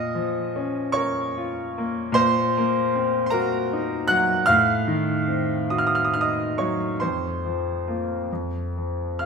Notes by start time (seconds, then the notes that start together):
Already playing: A#2 D#5 D#6
0.15 F3
0.56 C#4
0.92 A#4 C#5 C#6
1.38 F4
1.78 A#3
2.12 A#2 C5 C6
2.58 A#3
2.95 C4
3.26 C6
3.30 F#4 A#4 A#5
3.73 D#4
4.08 F#3 F#5 F#6
4.46 A2 F5 F6
4.87 D#3
5.28 C4
5.70 F#4 D#6
5.78 F6
5.87 D#6
5.95 F6
6.05 D#6
6.14 D#4 F6
6.21 D#5 D#6
6.58 F#3 C#5 C#6
7.00 F2 C5 C6
7.46 F3
7.88 A#3 F4
8.32 F2
8.77 F3
9.19 F5 F6